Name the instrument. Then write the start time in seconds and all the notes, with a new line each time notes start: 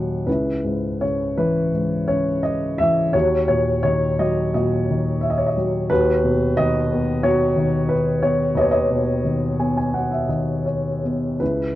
upright piano
Already playing: D#2 A#2 D#3 F#3 D#5 F#5
0.27 C#2 E4 B4
0.64 G#2
1.01 C#3 C#5
1.38 E3 B4
1.73 G#2
2.08 C#3 C#5
2.43 D#5
2.78 E3 E5
3.13 D#2 F#4 C#5
3.48 A#2 C#5
3.83 D#3 C#5
4.19 F#3 D#5
4.54 A#2 F#4 D#5
4.90 D#3
5.21 E5
5.30 D#5
5.38 C#5
5.47 D#5
5.57 F#3
5.90 D#2 F#4 B4
6.24 B2
6.57 D#3 D#5
6.92 B3
7.23 B2 F#4 C#5
7.56 D#3
7.89 B4
8.22 B3 C#5
8.55 D#2 B4 D#5
8.61 C#5
8.71 B4 D#5
8.91 B2
9.24 D#3
9.59 B3 G#5
9.77 G#5
9.94 B2 F#5
10.11 E5
10.29 D#3 D#5
10.66 C#5
11.04 B3
11.40 C#2 E4 B4